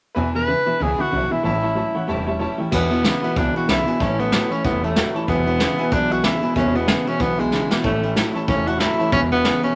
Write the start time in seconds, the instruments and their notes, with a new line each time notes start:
0.15 steel-string acoustic guitar E2 B2 E3 G#3 D4 E4, clean electric guitar E2 B2, upright bass E2, upright piano B4 E5 G#5
0.33 clean electric guitar E2 B2, steel-string acoustic guitar G#3 D4 E4, upright piano B4 E5 G#5, tenor saxophone B4
0.38 steel-string acoustic guitar E3
0.47 clean electric guitar E2 C#3, steel-string acoustic guitar E3 G#3 D4 E4, upright piano E5 G#5
0.66 clean electric guitar E2 B2, steel-string acoustic guitar E3 G#3 D4 E4, upright piano B4 E5 G#5, muted upright bass stroke
0.78 upright bass C#2, steel-string acoustic guitar E2 B2 E3 G#3 D4 E4, clean electric guitar E2 D3, upright piano B4 E5 G#5
0.82 tenor saxophone G#4
0.97 clean electric guitar E2 D3, steel-string acoustic guitar G#3 D4 E4, tenor saxophone F#4, upright piano B4 E5 B5, muted upright bass stroke
1.02 steel-string acoustic guitar E3
1.11 upright bass B1, clean electric guitar E2 C#3, steel-string acoustic guitar E3 G#3 D4, upright piano B4 E5 F#5
1.15 steel-string acoustic guitar E4
1.30 clean electric guitar E2 B2, steel-string acoustic guitar E3 G#3 D4 E4, tenor saxophone E4, upright piano B4 E5 G#5
1.43 upright bass A1, clean electric guitar A2 E3, steel-string acoustic guitar A2 E3 G3 C#4 E4, tenor saxophone E4, upright piano C#5 E5 A5
1.62 clean electric guitar A2 E3, steel-string acoustic guitar C#4 E4, upright piano C#5 E5 A5
1.66 steel-string acoustic guitar G3
1.75 clean electric guitar A2 F#3, steel-string acoustic guitar E3 G3 C#4 E4, upright piano C#5 E5 A5
1.94 clean electric guitar A2 E3, steel-string acoustic guitar G3 C#4 E4, upright piano C#5 E5 F#5, muted upright bass stroke
2.07 upright bass E1, clean electric guitar A2 G3, steel-string acoustic guitar A2 E3 G3 C#4 E4, upright piano C#5 E5 A5
2.26 clean electric guitar A2 G3, steel-string acoustic guitar G3 C#4 E4, upright piano C#5 E5 A5
2.39 clean electric guitar A2 F#3, steel-string acoustic guitar E3 G3 C#4 E4, upright piano C#5 E5 A5
2.58 clean electric guitar A2 E3, steel-string acoustic guitar G3 C#4 E4, upright piano C#5 E5 G5, muted upright bass stroke
2.71 clean electric guitar E2 B2, steel-string acoustic guitar E2 B2 E3 G#3 D4 E4, upright bass E2, tenor saxophone B3, upright piano B4 E5 G#5, kick, crash
2.91 clean electric guitar E2 B2, steel-string acoustic guitar E3 G#3 D4 E4, upright piano E5, closed hi-hat
3.03 clean electric guitar E2 C#3, steel-string acoustic guitar E2 B2 E3 G#3 D4 E4, upright piano B4 E5 B5, snare, closed hi-hat
3.22 clean electric guitar E2 B2, steel-string acoustic guitar G#3 D4 E4, upright piano B4 E5 F#5, muted upright bass stroke, closed hi-hat
3.26 steel-string acoustic guitar E3
3.35 upright bass C#2, clean electric guitar E2 B2, steel-string acoustic guitar E3 G#3 D4, tenor saxophone D4, upright piano B4 E5 G#5, kick, closed hi-hat
3.39 steel-string acoustic guitar E4
3.54 clean electric guitar E2 B2, steel-string acoustic guitar E3 G#3 D4 E4, tenor saxophone F#4, upright piano B4 E5 G#5, closed hi-hat
3.68 upright bass B1, steel-string acoustic guitar E2 B2 E3 G#3 D4 E4, clean electric guitar E2 C#3, tenor saxophone E4, upright piano B4 E5 F#5, snare, closed hi-hat
3.86 clean electric guitar E2 B2, steel-string acoustic guitar E3 G#3 D4 E4, upright piano B4 E5 G#5, muted upright bass stroke, closed hi-hat
3.99 upright bass A1, steel-string acoustic guitar A2 E3 G3 C#4 E4, clean electric guitar A2 E3, tenor saxophone C#4, upright piano C#5 E5 A5, kick, closed hi-hat
4.18 clean electric guitar A2 E3, steel-string acoustic guitar G3 C#4 E4, tenor saxophone B3, upright piano C#5 E5 A5, closed hi-hat
4.31 steel-string acoustic guitar A2 E3 G3 C#4 E4, clean electric guitar A2 F#3, upright piano C#5 E5 A5, snare, closed hi-hat
4.49 clean electric guitar A2 E3, tenor saxophone C#4, steel-string acoustic guitar C#4 E4, upright piano C#5 E5 B5, muted upright bass stroke, closed hi-hat
4.54 steel-string acoustic guitar G3
4.63 upright bass E1, clean electric guitar A2 E3, steel-string acoustic guitar E3 G3 C#4 E4, tenor saxophone B3, upright piano C#5 E5 F#5, kick, closed hi-hat
4.82 clean electric guitar A2 E3, steel-string acoustic guitar G3 C#4 E4, tenor saxophone A3, upright piano C#5 E5 A5, closed hi-hat
4.95 steel-string acoustic guitar A2 E3 G3 C#4 E4, clean electric guitar A2 F#3, upright piano C#5 E5 F#5, snare, closed hi-hat
5.14 clean electric guitar A2 E3, steel-string acoustic guitar G3 C#4 E4, upright piano C#5 E5 A5, muted upright bass stroke, closed hi-hat
5.27 upright bass E1, steel-string acoustic guitar E2 B2 E3 G#3 D4 E4, clean electric guitar E2 B2, tenor saxophone B3, upright piano B4 E5 G#5, kick, closed hi-hat
5.46 clean electric guitar E2 B2, steel-string acoustic guitar E3 G#3 D4 E4, upright piano B4 E5 G#5, closed hi-hat
5.58 steel-string acoustic guitar E2 B2 E3 G#3 D4 E4, clean electric guitar E2 C#3, upright piano B4 E5 G#5, snare, closed hi-hat
5.77 clean electric guitar E2 B2, steel-string acoustic guitar E3 G#3 D4 E4, upright piano B4 E5 G#5, closed hi-hat
5.91 upright bass B1, clean electric guitar E2 B2, steel-string acoustic guitar E3 G#3 D4 E4, tenor saxophone D4, upright piano E5, kick, closed hi-hat
6.10 clean electric guitar E2 B2, steel-string acoustic guitar E3 G#3 D4 E4, tenor saxophone F#4, upright piano B4 E5 G#5, closed hi-hat
6.23 clean electric guitar E2 C#3, steel-string acoustic guitar E2 B2 E3 G#3 D4 E4, tenor saxophone E4, upright piano B4 G#5, snare, closed hi-hat
6.41 clean electric guitar E2 B2, steel-string acoustic guitar G#3 D4 E4, upright piano B4 E5 G#5, muted upright bass stroke, closed hi-hat
6.45 steel-string acoustic guitar E3
6.54 upright bass E1, steel-string acoustic guitar E2 B2 E3 G#3 D4 E4, clean electric guitar E2 B2, tenor saxophone C#4, upright piano B4 E5 G#5, kick, closed hi-hat
6.73 clean electric guitar E2 B2, steel-string acoustic guitar E3 G#3 D4 E4, tenor saxophone B3, upright piano B4 E5 G#5, closed hi-hat
6.86 steel-string acoustic guitar E2 B2 E3 G#3 D4 E4, clean electric guitar E2 C#3, upright piano B4 E5 G#5, snare, closed hi-hat
7.05 clean electric guitar E2 B2, steel-string acoustic guitar E3 G#3 D4 E4, tenor saxophone C#4, upright piano B4 E5 G#5, muted upright bass stroke, closed hi-hat
7.18 upright bass B1, clean electric guitar E2 B2, steel-string acoustic guitar E3 G#3 D4 E4, tenor saxophone B3, upright piano B4 E5 G#5, kick, closed hi-hat
7.37 clean electric guitar E2 B2, steel-string acoustic guitar E3 G#3 D4 E4, tenor saxophone G#3, upright piano B4 E5 G#5, closed hi-hat
7.51 steel-string acoustic guitar E2 B2 E3 G#3 D4 E4, clean electric guitar E2 C#3, upright piano B4 E5, snare
7.69 clean electric guitar E2 B2, steel-string acoustic guitar E3 G#3 D4 E4, upright piano B4 E5 F#5, muted upright bass stroke, snare
7.83 upright bass A1, steel-string acoustic guitar A2 E3 G3 C#4 E4, clean electric guitar A2 E3, tenor saxophone A3, upright piano C#5 E5 A5, kick, closed hi-hat
8.01 clean electric guitar A2 E3, steel-string acoustic guitar G3 C#4 E4, upright piano C#5 E5 G5, closed hi-hat
8.15 steel-string acoustic guitar A2 E3 G3 C#4 E4, clean electric guitar A2 F#3, upright piano C#5 E5 A5, snare, closed hi-hat
8.34 clean electric guitar A2 E3, steel-string acoustic guitar G3 C#4 E4, upright piano C#5 E5 A5, muted upright bass stroke, closed hi-hat
8.47 upright bass E1, clean electric guitar A2 E3, steel-string acoustic guitar E3 G3 C#4 E4, tenor saxophone C#4, upright piano C#5 E5 A5, kick, closed hi-hat
8.66 clean electric guitar A2 E3, steel-string acoustic guitar G3 C#4 E4, tenor saxophone F#4, upright piano C#5 E5 A5, closed hi-hat
8.79 steel-string acoustic guitar A2 E3 G3 C#4 E4, clean electric guitar A2 F#3, tenor saxophone E4, upright piano C#5 A5, snare, closed hi-hat
8.97 clean electric guitar A2 E3, steel-string acoustic guitar G3 C#4 E4, upright piano C#5 E5 A5, muted upright bass stroke, closed hi-hat
9.11 upright bass E1, steel-string acoustic guitar E2 B2 E3 G#3 D4 E4, clean electric guitar E2 B2, tenor saxophone C#4, upright piano B4 E5 G#5, kick, closed hi-hat
9.31 clean electric guitar E2 B2, steel-string acoustic guitar E3 G#3 D4 E4, tenor saxophone B3, upright piano E5, closed hi-hat
9.43 steel-string acoustic guitar E2 B2 E3 G#3 D4 E4, clean electric guitar E2 C#3, upright piano B4 G#5, snare, closed hi-hat
9.62 clean electric guitar E2 B2, steel-string acoustic guitar E3 G#3 D4 E4, tenor saxophone C#4, upright piano B4 E5 G#5, muted upright bass stroke, closed hi-hat